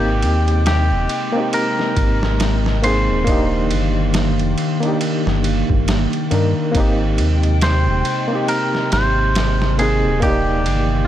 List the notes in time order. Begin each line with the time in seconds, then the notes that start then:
Already playing: G#1 C3 G#3 A#3 C4 D#4 G4 G5
0.22 D#2, ride
0.48 ride
0.66 G4, snare, ride
0.91 D#1
1.09 ride
1.32 A#3 C4
1.38 D#4 G4
1.53 A#4, ride
1.79 snare
1.96 G#1, kick, ride
2.23 snare
2.40 snare, ride
2.66 snare
2.82 A#3 C4 D#4 G#4 C5, ride
3.09 D#1
3.25 D#3 A#3 D4, kick, ride
3.30 D#4 G4
3.71 G1, ride
4.14 snare, ride
4.39 F1, ride
4.58 ride
4.80 A#3 D4, ride
4.85 D#4 G4
5.01 ride
5.27 G1, snare
5.44 ride
5.69 G1, kick
5.88 snare, ride
6.13 ride
6.31 G2 A#3 D4 D#4 A#4, ride
6.72 G#1 C3 G#3 A#3 C4 G5, kick, ride
6.77 D#4 G4
7.18 D#2, ride
7.43 ride
7.61 C5, snare, ride
7.87 D#1
8.05 ride
8.28 A#3 C4
8.33 D#4 G4
8.48 A#4, ride
8.75 snare
8.92 G#1 C5, snare, ride
9.35 snare, ride
9.62 snare
9.79 A#3 C4 D#4 G#4, ride
10.04 D#1
10.20 D#3 A#3 G4 D5, kick, ride
10.25 D#4 G4
10.66 G1, ride